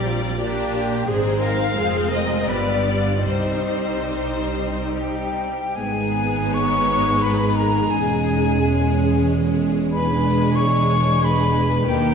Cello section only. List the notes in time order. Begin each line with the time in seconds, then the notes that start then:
0.06 F4
0.40 G4
1.08 G#4
1.42 A#4
1.77 G#4
2.13 A#4
2.49 B4
2.86 D4
3.27 D#4
5.77 G#2
7.91 E2
11.88 D#2